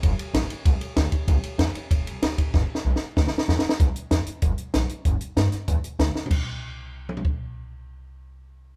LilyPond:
<<
  \new Staff \with { instrumentName = "Upright bass" } { \clef bass \time 4/4 \key g \dorian \tempo 4 = 191 f,,8 r8 a,,8 r8 c,8 r8 d,8 r8 | c,8 r8 e,8 r8 f,,8 c,8 d,8 a,,8 | g,,8 r8 b,,8 r8 d,8 r8 e,8 r8 | c,8 r8 e,8 r8 f,,8 r8 bes,,8 r8 |
g,,8 r8 g,8 r8 e,8 r8 d,8 r8 | c,1~ | c,1 | }
  \new DrumStaff \with { instrumentName = "Drums" } \drummode { \time 4/4 <bd cymr>8 cymr8 <cymr sn>8 cymr8 <bd cymr>8 cymr8 <cymr sn>8 <bd cymr>8 | <bd cymr>8 cymr8 <cymr sn>8 cymr8 <bd cymr>8 cymr8 <cymr sn>8 <bd cymr>8 | \tuplet 3/2 { <bd sn>8 r8 sn8 r8 sn8 r8 <bd sn>8 sn8 sn8 sn8 sn8 sn8 } | <hh bd sn>8 hh8 <hh sn>8 hh8 <hh bd>8 hh8 <hh sn>8 hh8 |
<hh bd>8 hh8 <hh sn>8 <hh sn>8 <hh bd>8 hh8 \tuplet 3/2 { <hh sn>16 r16 r16 sn16 r16 tomfh16 } | <cymc bd>4 r4 r8 toml16 tomfh16 bd4 | r4 r4 r4 r4 | }
>>